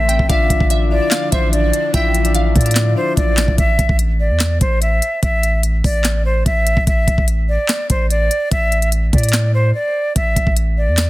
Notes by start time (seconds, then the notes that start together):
Already playing: A1 D3 A3 C4 A4 C5 E5
0.09 G5, closed hi-hat
0.19 A1, kick
0.29 A1 F3 D4 F4 D5 E5 F5, kick, closed hi-hat
0.50 A1, kick, closed hi-hat
0.60 A1, kick
0.70 E5, closed hi-hat
0.91 E4 F4 D5
1.01 E4 F4 D5
1.11 F5, snare, clap, closed hi-hat
1.32 A1 C5 E5, kick, closed hi-hat
1.53 D5, closed hi-hat
1.73 closed hi-hat
1.93 A1 E4 F4 E5 G5, kick, closed hi-hat
2.14 closed hi-hat
2.24 E4 F4 D5, closed hi-hat
2.35 F5, closed hi-hat
2.55 A2 D5, kick, closed hi-hat, open hi-hat
2.61 closed hi-hat
2.65 E4 F4 D5, closed hi-hat
2.71 closed hi-hat
2.75 snare, clap, closed hi-hat
2.96 D4 F4 C5 D5
3.17 A1 D5, kick, closed hi-hat
3.37 snare, clap, closed hi-hat
3.48 A1, kick
3.58 A1 E5, kick, closed hi-hat
3.79 A1, kick, closed hi-hat
3.89 A1, kick
3.99 closed hi-hat
4.20 D5
4.30 E2
4.40 snare, clap, closed hi-hat
4.61 A1 C5, kick, closed hi-hat
4.82 E5, closed hi-hat
5.02 closed hi-hat
5.23 A1 E5, kick, closed hi-hat
5.43 closed hi-hat
5.63 closed hi-hat
5.84 A1 D5, kick, open hi-hat
6.04 snare, clap, closed hi-hat
6.25 C5
6.46 A1 E5, kick, closed hi-hat
6.67 closed hi-hat
6.77 A1, kick
6.87 A1 E5, kick, closed hi-hat
7.08 A1, kick, closed hi-hat
7.18 A1, kick
7.28 closed hi-hat
7.49 D5
7.68 snare, clap, closed hi-hat
7.90 A1 C5, kick, closed hi-hat
8.10 D5, closed hi-hat
8.31 closed hi-hat
8.51 A1 E5, kick, closed hi-hat
8.72 closed hi-hat
8.82 closed hi-hat
8.92 closed hi-hat
9.13 A2 D5, kick, closed hi-hat, open hi-hat
9.18 closed hi-hat
9.23 closed hi-hat
9.29 closed hi-hat
9.33 snare, clap, closed hi-hat
9.54 C5
9.75 D5
10.16 A1 E5, kick, closed hi-hat
10.36 A1, kick, closed hi-hat
10.47 A1, kick
10.57 closed hi-hat
10.77 D5
10.88 E2
10.97 snare, clap, closed hi-hat